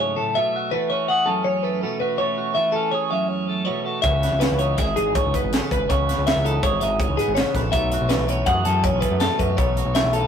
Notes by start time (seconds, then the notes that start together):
Already playing: G#2 C#3 F#3 A3 E4 G#4
0.00 C#5
0.16 A2 A4
0.35 B2 A3 E5
0.56 F#4
0.71 E3 A3 B4
0.90 C#4 C#5
1.08 G#4 F#5
1.26 F#2 C#4 A4
1.45 C#5
1.63 A3 B4
1.81 B2 A3 A4
2.00 F#4 B4
2.18 B2 A3 C#5
2.38 F#4
2.55 E3 A3 E5
2.72 C#4 A4
2.91 G#4 C#5
3.10 F#2 C#4 E5
3.28 C#5
3.47 A3 A4
3.65 B2 A3 C#5
3.84 F#4 A4
4.02 C#2 C#3 B3 E5, kick, closed hi-hat
4.23 B4, snare, closed hi-hat
4.32 C#2
4.40 E3 B3 B4, snare, closed hi-hat
4.51 C#2
4.59 D#4 C#5, closed hi-hat
4.77 G#1 G#4 E5, kick, snare, closed hi-hat
4.96 G#1 G#2 D#4 G#4, closed hi-hat
5.15 C#5, kick, closed hi-hat
5.26 C#2
5.34 B3 B4, kick, closed hi-hat
5.44 G#1
5.53 C#3 B3 A4, snare, closed hi-hat
5.71 G#1 B4, kick, closed hi-hat
5.89 C#2 C#3 B3 C#5, kick, closed hi-hat
6.09 B4, snare, closed hi-hat
6.18 C#2
6.27 E3 B3 E5, snare, closed hi-hat
6.36 C#2
6.45 D#4 A4, closed hi-hat
6.63 G#1 G#4 C#5, kick, closed hi-hat
6.80 G#1 G#2 D#4 E5, closed hi-hat
7.00 C#5, kick, closed hi-hat
7.09 C#2
7.17 B3 G#4, closed hi-hat
7.28 G#1
7.35 C#5, snare, closed hi-hat
7.39 C#3 B3
7.54 A#1 A4 B4, kick, snare, closed hi-hat
7.72 B1 B2 A3 E5, kick, closed hi-hat
7.92 F#4, closed hi-hat
8.01 B1
8.09 E3 A3 B4, snare, closed hi-hat
8.18 B1
8.28 C#4 C#5, closed hi-hat
8.46 F#2 G#4 F#5, kick, closed hi-hat
8.65 F#2 C#4 A4, closed hi-hat
8.84 C#5, kick, closed hi-hat
8.93 B1
9.01 A3 B4, kick, closed hi-hat
9.11 F#2
9.20 B2 A3 A4, snare, closed hi-hat
9.39 F#2 F#4 B4, kick, closed hi-hat
9.57 B1 B2 A3 C#5, kick, closed hi-hat
9.77 F#4, closed hi-hat
9.85 B1
9.94 E3 A3 E5, snare, closed hi-hat
10.04 B1
10.13 C#4 A4, closed hi-hat